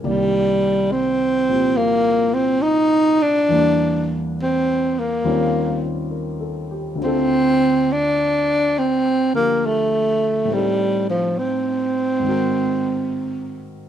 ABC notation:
X:1
M:4/4
L:1/8
Q:"Swing" 1/4=69
K:Dphr
V:1 name="Grand piano"
^A z6 z | z6 (3B A G | z8 | z8 |]
V:2 name="Grand piano"
[C,,C,E,B,d]3 [B,,F,CG]4- [B,,F,CG] | [=E,,=E,G,B,D]4 [_E,,_E,G,C_DF]4 | [D,,D,CFA]4- [D,,D,CFA] [D,F,DG]3 | [A,,G,CEA]4 [_A,,E,C_GB]4 |]
V:3 name="Tenor saxophone"
G,2 C2 B, C E D- | D z C B,2 z3 | C2 D2 C B, A,2 | G, F, C4- C z |]